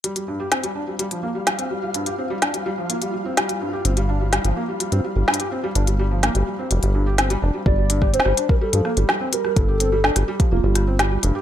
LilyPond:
<<
  \new Staff \with { instrumentName = "Synth texture" } { \time 4/4 \key c \dorian \tempo 4 = 126 <f' f''>1~ | <f' f''>1~ | <f' f''>1~ | <f' f''>1 |
r1 | r1 | }
  \new Staff \with { instrumentName = "Soft synth lead" } { \time 4/4 \key c \dorian r1 | r1 | r1 | r1 |
d''4 c''8. bes'16 a'4 r8 bes'8 | a'4. g'8 f'4. r8 | }
  \new Staff \with { instrumentName = "Felt piano" } { \clef bass \time 4/4 \key c \dorian g16 g16 g,16 g'16 c'16 g16 d'16 g16 g16 f16 bes16 g16 g16 c'16 g16 g16 | g,16 g'16 c'16 g16 d'16 g16 g16 f16 bes16 g16 g16 c'16 g16 g16 g,16 g'16 | c'16 g16 d'16 g16 g16 f16 bes16 g16 g16 c'16 g16 g16 g,16 g'16 c'16 g16 | d'16 g16 g16 f16 bes16 g16 g16 c'16 g16 g16 g,16 g'16 c'16 g16 d'16 g16 |
g16 g16 g,16 g'16 c'16 g16 d'16 g16 g16 f16 bes16 g16 g16 c'16 g16 g16 | g,16 g'16 c'16 g16 d'16 g16 g16 f16 bes16 g16 g16 c'16 g16 g16 g,16 g'16 | }
  \new Staff \with { instrumentName = "Acid bass" } { \clef bass \time 4/4 \key c \dorian r1 | r1 | g,,4~ g,,16 g,,16 r8. g,16 r16 g,,16 r4 | g,,4~ g,,16 g,,16 r8 f,,16 g,,4~ g,,16 f,,16 r16 |
g,,4~ g,,16 g,,16 r8. g,16 r16 g,,16 r4 | g,,4~ g,,16 g,,16 r8 f,,16 g,,4~ g,,16 f,,16 r16 | }
  \new DrumStaff \with { instrumentName = "Drums" } \drummode { \time 4/4 hh16 hh8. <hh sn>16 hh8. hh16 hh8. <hh sn>16 hh8. | hh16 hh8. <hh sn>16 hh8. hh16 hh8. <hh sn>16 hh8. | hh16 hh8. <hh sn>16 hh8. hh16 hh8. sn32 hh32 hh8. | hh16 hh8. <hh sn>16 hh8. hh16 hh8. <hh sn>16 hh8. |
bd8 hh16 <bd ss>16 hh32 sn32 ss16 hh16 bd16 r16 hh16 ss16 hh16 sn8 hh16 ss16 | <hh bd>8 hh8 sn16 <hh ss>8 <hh bd>16 r8 <hh ss>8 <hh sn>8 hh8 | }
>>